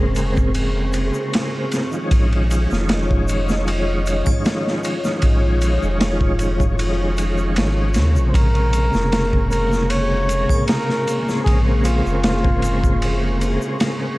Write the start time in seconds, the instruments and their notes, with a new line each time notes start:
Already playing: sub bass F1, tonewheel organ C#3 G#3 A#3 C4, analog synth pad C4 G#4 C#6
0.16 ride, shaker
0.37 kick, shaker
0.54 tonewheel organ C#3 G#3 A#3, ride, shaker
0.60 tonewheel organ C4
0.93 ride, shaker
1.14 shaker
1.33 snare, ride, shaker
1.72 snare, ride, shaker
1.91 tonewheel organ D#3 F3 G#3, shaker
1.97 tonewheel organ C#4
2.11 sub bass A#1, analog synth pad F4 C#5 D#5, kick, ride, shaker
2.33 ride
2.51 ride, shaker
2.71 sub bass F1, snare, shaker
2.88 snare, ride, shaker
3.11 kick
3.28 ride, shaker
3.49 snare, shaker
3.67 ride, shaker
4.06 ride, shaker
4.26 kick, triangle, shaker
4.45 snare, ride, shaker
4.67 snare
4.84 ride, shaker
5.03 tonewheel organ D#3 F3 G#3, snare, shaker
5.09 tonewheel organ C#4
5.22 sub bass A#1, analog synth pad C#6, kick, ride, shaker
5.62 ride, shaker
5.83 sub bass F1, shaker
6.01 snare, ride, shaker
6.21 kick
6.39 ride, shaker
6.60 kick, shaker
6.77 tonewheel organ D#3 F3 G#3, ride, shaker
6.83 tonewheel organ C#4
7.17 ride, shaker
7.38 shaker
7.56 sub bass G#1, snare, ride, shaker
7.94 sub bass D#2, tonewheel organ C#3 G#3 A#3, snare, ride, shaker
7.99 tonewheel organ C3
8.16 sub bass A#1, shaker
8.29 muted trumpet C5
8.34 sub bass A#1, analog synth pad A#3 G#4, muted trumpet A#4, kick, ride, shaker
8.55 ride
8.73 ride, shaker
8.93 sub bass F1, snare, shaker
9.12 snare, ride, shaker
9.33 kick
9.51 muted trumpet A#4, ride, shaker
9.72 snare, shaker
9.90 muted trumpet C#5, ride, shaker
10.29 ride, shaker
10.49 kick, triangle, shaker
10.67 muted trumpet A#4, snare, ride, shaker
10.89 snare
11.07 ride, shaker
11.27 tonewheel organ C#3 G#3, snare, shaker
11.31 tonewheel organ A#3 C4
11.44 sub bass A#1, muted trumpet G#4, kick, ride, shaker
11.84 muted trumpet F4, ride, shaker
12.06 sub bass F1, shaker
12.23 snare, ride, shaker
12.44 kick
12.62 ride, shaker
12.84 kick, shaker
13.00 tonewheel organ C#3 G#3 A#3, ride, shaker
13.05 tonewheel organ C4
13.41 ride, shaker
13.62 shaker
13.80 snare, ride, shaker